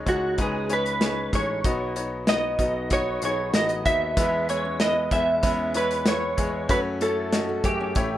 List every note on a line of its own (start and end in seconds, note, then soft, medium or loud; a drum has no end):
0.00 1.67 C#3 soft
0.00 0.06 G#3 medium
0.00 0.06 C#4 medium
0.00 0.06 D#4 medium
0.00 1.01 G#4 medium
0.00 0.06 C#5 medium
0.06 0.36 C#2 medium
0.06 0.31 G#3 medium
0.06 0.31 C#4 medium
0.06 0.31 D#4 medium
0.06 0.40 F#4 medium
0.06 0.31 C#5 medium
0.06 kick medium
0.06 closed hi-hat medium
0.38 1.29 C#2 medium
0.38 0.63 G#3 medium
0.38 0.63 C#4 medium
0.38 0.63 D#4 medium
0.38 0.72 G#4 medium
0.38 0.63 B4 medium
0.38 kick medium
0.38 closed hi-hat medium
0.70 0.95 G#3 medium
0.70 0.95 C#4 medium
0.70 0.95 D#4 medium
0.70 1.31 B4 medium
0.70 0.95 C#5 medium
0.70 closed hi-hat medium
0.86 closed hi-hat soft
1.01 1.26 G#3 medium
1.01 1.26 C#4 medium
1.01 1.26 D#4 medium
1.01 1.26 G#4 medium
1.01 snare medium
1.01 closed hi-hat medium
1.33 1.62 A1 medium
1.33 1.58 G#3 medium
1.33 1.58 C#4 medium
1.33 1.58 D#4 medium
1.33 1.58 G#4 medium
1.33 1.93 C#5 medium
1.33 kick medium
1.33 snare soft
1.33 closed hi-hat medium
1.64 2.55 B1 medium
1.64 2.55 B2 medium
1.64 1.90 B3 medium
1.64 1.90 D#4 medium
1.64 1.90 F#4 medium
1.64 1.90 D#5 medium
1.64 kick loud
1.64 closed hi-hat medium
1.96 2.21 B3 medium
1.96 2.21 D#4 medium
1.96 2.21 F#4 medium
1.96 2.21 C#5 medium
1.96 closed hi-hat medium
2.27 2.53 B3 medium
2.27 2.53 D#4 medium
2.27 2.53 F#4 medium
2.27 2.53 D#5 medium
2.27 2.92 D#5 medium
2.27 snare medium
2.27 closed hi-hat medium
2.59 3.18 B1 medium
2.59 2.84 B3 medium
2.59 2.84 D#4 medium
2.59 2.84 F#4 medium
2.59 2.84 D#5 medium
2.59 kick medium
2.59 closed hi-hat medium
2.90 3.16 B3 medium
2.90 3.16 D#4 medium
2.90 3.16 F#4 medium
2.90 3.21 C#5 medium
2.90 3.16 D#5 medium
2.90 kick medium
2.90 closed hi-hat medium
3.22 3.52 B1 medium
3.22 3.47 B3 medium
3.22 3.47 D#4 medium
3.22 3.48 F#4 medium
3.22 3.47 G#4 medium
3.22 3.54 C#5 medium
3.22 closed hi-hat medium
3.54 3.83 A1 medium
3.54 3.79 B3 medium
3.54 3.79 D#4 medium
3.54 3.79 F#4 medium
3.54 3.79 D#5 medium
3.54 3.85 D#5 medium
3.54 snare medium
3.54 closed hi-hat medium
3.69 closed hi-hat soft
3.85 4.15 D#2 medium
3.85 4.10 B3 medium
3.85 4.10 D#4 medium
3.85 4.10 F#4 medium
3.85 4.10 D#5 medium
3.85 4.49 E5 loud
3.85 kick medium
3.85 closed hi-hat medium
4.17 5.08 E2 medium
4.17 5.08 E3 medium
4.17 4.42 G#3 medium
4.17 4.42 B3 medium
4.17 4.47 B3 medium
4.17 4.42 E4 medium
4.17 4.42 B4 medium
4.17 kick medium
4.17 closed hi-hat medium
4.49 4.74 G#3 medium
4.49 4.73 B3 medium
4.49 4.74 E4 medium
4.49 4.74 B4 medium
4.49 4.81 C#5 medium
4.49 closed hi-hat medium
4.65 4.95 C#4 medium
4.80 5.05 G#3 medium
4.80 5.05 B3 medium
4.80 5.05 E4 medium
4.80 5.05 B4 medium
4.80 5.12 D#5 medium
4.80 snare medium
4.80 closed hi-hat medium
5.11 5.41 E2 medium
5.11 5.36 G#3 medium
5.11 5.37 B3 medium
5.11 5.27 B3 medium
5.11 5.37 E4 medium
5.11 5.37 B4 medium
5.11 5.76 E5 medium
5.11 kick medium
5.11 closed hi-hat medium
5.43 6.34 E2 medium
5.43 5.68 G#3 medium
5.43 5.68 B3 medium
5.43 5.73 C#4 medium
5.43 5.68 E4 medium
5.43 5.68 B4 medium
5.43 kick medium
5.43 closed hi-hat medium
5.74 6.00 G#3 medium
5.74 6.00 B3 medium
5.74 5.90 E4 medium
5.74 6.00 E4 medium
5.74 6.08 B4 medium
5.74 6.00 C#5 medium
5.74 closed hi-hat medium
5.91 closed hi-hat soft
6.05 6.31 G#3 medium
6.05 6.31 B3 medium
6.05 6.31 E4 medium
6.05 6.31 B4 medium
6.05 6.70 C#5 medium
6.05 snare medium
6.05 closed hi-hat medium
6.37 6.67 E2 medium
6.37 6.63 G#3 medium
6.37 6.62 B3 medium
6.37 6.63 E4 medium
6.37 6.63 G#4 medium
6.37 kick medium
6.37 closed hi-hat medium
6.69 7.60 F#2 medium
6.69 6.94 A3 medium
6.69 6.94 C#4 medium
6.69 7.00 C#4 medium
6.69 6.94 F#4 medium
6.69 6.79 B4 medium
6.69 6.94 C#5 loud
6.69 kick loud
6.69 closed hi-hat medium
7.01 7.26 A3 medium
7.01 7.26 C#4 medium
7.01 7.31 E4 medium
7.01 7.26 F#4 medium
7.01 7.26 A4 medium
7.01 7.65 A4 medium
7.01 closed hi-hat medium
7.33 7.58 A3 medium
7.33 7.58 C#4 medium
7.33 7.58 F#4 medium
7.33 7.58 D#5 medium
7.33 snare medium
7.33 closed hi-hat medium
7.49 7.64 F#4 medium
7.64 7.93 F#2 medium
7.64 7.89 A3 medium
7.64 7.89 C#4 medium
7.64 7.89 F#4 medium
7.64 8.18 G4 medium
7.64 7.89 G#4 medium
7.64 kick medium
7.64 closed hi-hat medium
7.80 8.10 C#4 medium
7.95 8.18 A1 medium
7.95 8.18 A2 medium
7.95 8.18 A3 medium
7.95 8.18 E4 medium
7.95 8.18 G4 medium
7.95 8.18 C#5 medium
7.95 kick medium
7.95 closed hi-hat medium